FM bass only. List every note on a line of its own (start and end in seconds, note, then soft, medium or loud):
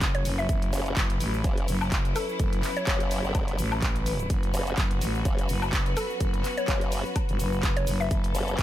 0.00 0.24 F#1 loud
0.25 0.47 F#1 loud
0.49 0.71 F#1 loud
0.97 1.19 F#1 medium
1.20 1.43 A1 loud
1.68 2.14 F#1 loud
2.40 2.62 F#1 loud
3.59 3.81 A1 loud
3.82 4.28 A1 loud
4.30 4.52 F#1 loud
4.78 5.00 F#1 loud
5.01 5.24 A1 loud
5.49 5.95 F#1 loud
6.21 6.43 F#1 loud
7.29 7.38 G1 loud
7.40 7.85 F#1 loud
7.87 8.09 F#1 loud
8.11 8.33 F#1 loud
8.59 8.63 F#1 medium